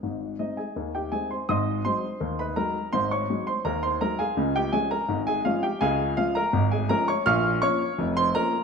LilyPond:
<<
  \new Staff \with { instrumentName = "Grand piano" } { \time 2/4 \key aes \major \tempo 4 = 83 aes''8 <ees' ees''>16 <aes' aes''>8 <g' g''>16 <aes' aes''>16 <c'' c'''>16 | <ees'' c''' ees'''>8 <c'' c'''>8. <ces'' ces'''>16 <bes' bes''>8 | <c'' c'''>16 <des'' des'''>8 <c'' c'''>16 <bes' bes''>16 <c'' c'''>16 <bes' bes''>16 <aes' f'' aes''>16~ | <aes' f'' aes''>16 <g' g''>16 <aes' aes''>16 <bes' bes''>8 <aes' aes''>16 <f' f''>16 <g' g''>16 |
<aes' f'' aes''>8 <f' f''>16 <bes' bes''>8 <aes' aes''>16 <bes' bes''>16 <des'' des'''>16 | \key bes \minor <f'' des''' f'''>8 <des'' des'''>8. <c'' c'''>16 <bes' bes''>8 | }
  \new Staff \with { instrumentName = "Grand piano" } { \clef bass \time 2/4 \key aes \major <aes,, aes,>8 <aes c'>8 <ees, ees>8 <aes c' ees'>8 | <aes,, aes,>8 <ges aes ees'>8 <ees, ees>8 <ges aes ees'>8 | <aes,, aes,>8 <ges aes ees'>8 <ees, ees>8 <ges aes ees'>8 | <des, des>8 <f aes des'>8 <aes,, aes,>8 <f aes des'>8 |
<des, des>8 <f aes des'>8 <aes,, aes,>8 <f aes des'>8 | \key bes \minor <bes,, bes,>8 <f bes des'>8 <f,, f,>8 <f bes des'>8 | }
>>